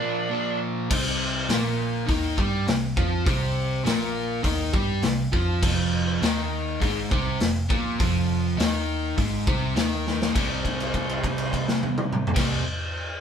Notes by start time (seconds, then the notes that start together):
Already playing: D4
0.00 A#2 F3 A#3
0.29 A#2 F3 A#3
0.90 C2 C3 C4, kick, crash
1.49 A#1 A#2 A#3, snare, open hi-hat
2.07 D#2 D#3 D#4, kick, open hi-hat
2.37 G2 G3 G4, kick
2.67 C2 C3, snare, open hi-hat
2.97 F2 F3 F4, kick
3.25 C2 C3 C4, kick, open hi-hat
3.84 A#1 A#2 A#3, snare, open hi-hat
4.43 D#2 D#3 D#4, kick, open hi-hat
4.73 G2 G3 G4, kick
5.02 C2 C3, snare, open hi-hat
5.33 F2 F3 F4, kick
5.62 F1 F2 F3, kick, crash
6.21 D#2 D#3 D#4, snare, open hi-hat
6.80 G#1 G#2 G#3, kick, open hi-hat
7.11 C2 C3 C4, kick
7.40 F1 F2, snare, open hi-hat
7.69 A#1 A#2 A#3, kick
7.99 F1 F2 F3, kick, open hi-hat
8.57 D#2 D#3 D#4, snare, open hi-hat
9.17 G#1 G#2 G#3, kick, open hi-hat
9.47 C2 C3 C4, kick
9.75 D#2 D#3 D#4, snare, open hi-hat
10.07 snare
10.22 snare
10.33 C2 C3 G3, kick, crash
10.38 C4
10.65 kick, crash
10.80 crash
10.94 kick, crash
11.09 crash
11.24 kick, crash
11.38 crash
11.53 kick, crash
11.68 snare
11.83 high tom
11.98 mid tom
12.13 mid tom
12.27 floor tom
12.35 C2 C3 G3 C4, kick, snare, crash